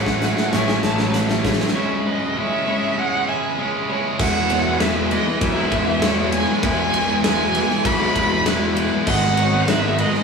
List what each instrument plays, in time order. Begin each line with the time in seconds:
Already playing: picked electric bass A1, distorted electric guitar A2 E3 A3 C#4 E4, clean electric guitar A2 E3 A3 E4 B4 E5, harmonium A3 E4 F#4 C#5, violin F#5
0.06 kick, snare
0.22 distorted electric guitar A2 E3 A3 C#4 E4, clean electric guitar F#4, snare, closed hi-hat
0.37 snare
0.53 picked electric bass A1, distorted electric guitar A2 E3 A3 C#4 E4, clean electric guitar C#5, violin G#5, snare, closed hi-hat
0.68 snare
0.83 picked electric bass A1, clean electric guitar E3, violin A5, snare, closed hi-hat
0.98 snare
1.14 distorted electric guitar A2 E3 A3 C#4 E4, clean electric guitar B4, snare, closed hi-hat
1.29 snare
1.44 distorted electric guitar A2 E3 A3 C#4 E4, clean electric guitar F#4, kick, snare, closed hi-hat
1.52 snare
1.60 snare
1.68 snare
1.75 distorted electric guitar C#3 G#3 C#4 E4, harmonium C#3 G#3, clean electric guitar C#5, violin E5
2.06 clean electric guitar G#3 B4, violin D#5
2.37 distorted electric guitar C#3 G#3 C#4 E4, violin E5
2.66 distorted electric guitar C#3 G#3 C#4 E4, clean electric guitar C#5
2.97 distorted electric guitar C#3 G#3 C#4 E4, violin F#5
3.28 clean electric guitar E3 E5, violin G#5
3.58 distorted electric guitar C#3 G#3 C#4 E4
3.89 distorted electric guitar C#3 G#3 C#4 E4, clean electric guitar C#5
4.19 picked electric bass E1, distorted electric guitar E3 G#3 B3 E4, harmonium E4 G#4 B4 G#5, clean electric guitar E5, violin F#5, kick, crash
4.50 distorted electric guitar E3 G#3 B3 E4, clean electric guitar C#5, ride
4.66 distorted electric guitar G#3 B3 E4
4.80 distorted electric guitar E3 G#3 B3 E4, clean electric guitar B4, violin E5, snare, ride
5.11 distorted electric guitar E3 G#3 B3 E4, clean electric guitar B4, violin D#5, ride
5.26 distorted electric guitar G#3 B3 E4, muted overdriven electric guitar stroke
5.41 picked electric bass B1, violin E5, kick, ride
5.56 distorted electric guitar G#3 B3 E4
5.71 picked electric bass E1, distorted electric guitar E3 G#3 B3 E4, kick, ride
5.86 muted overdriven electric guitar stroke
6.01 distorted electric guitar E3 G#3 B3 E4, clean electric guitar C#5, snare, ride
6.17 distorted electric guitar G#3 B3 E4
6.32 distorted electric guitar E3 G#3 B3 E4, violin G#5, ride
6.47 distorted electric guitar G#3 B3 E4
6.62 picked electric bass E1, distorted electric guitar E3 G#3 B3 E4, clean electric guitar B4, harmonium C#5, violin G#5, kick, ride
6.93 distorted electric guitar E3 G#3 B3 E4, ride
7.08 distorted electric guitar G#3 B3 E4
7.24 distorted electric guitar E3 G#3 B3 E4, clean electric guitar G#4, violin G#5, snare, ride
7.54 distorted electric guitar E3 G#3 B3 E4, ride
7.69 distorted electric guitar G#3 B3 E4, muted overdriven electric guitar stroke, snare
7.85 picked electric bass B1, violin B5, kick, ride
8.01 distorted electric guitar G#3 B3 E4
8.15 picked electric bass E1, distorted electric guitar E3 G#3 B3 E4, clean electric guitar B4, kick, ride
8.31 muted overdriven electric guitar stroke
8.45 distorted electric guitar E3 G#3 B3 E4, clean electric guitar B4, snare, ride
8.60 distorted electric guitar G#3 B3 E4
8.75 distorted electric guitar E3 G#3 B3 E4, ride
8.90 distorted electric guitar G#3 B3 E4
9.06 picked electric bass G#1, distorted electric guitar G#2 D#3 G#3 B3 D#4, harmonium F#4 B4 F#5, clean electric guitar D#5, violin F#5, kick, crash
9.36 distorted electric guitar D#3 G#3 B3 D#4, clean electric guitar C#5, ride
9.51 distorted electric guitar G#3 B3 D#4
9.67 distorted electric guitar G#2 D#3 G#3 B3 D#4, clean electric guitar B4, violin E5, snare, ride
9.98 distorted electric guitar D#3 G#3 B3 D#4, clean electric guitar B4, violin D#5, ride
10.13 distorted electric guitar G#3 B3 D#4, muted overdriven electric guitar stroke, snare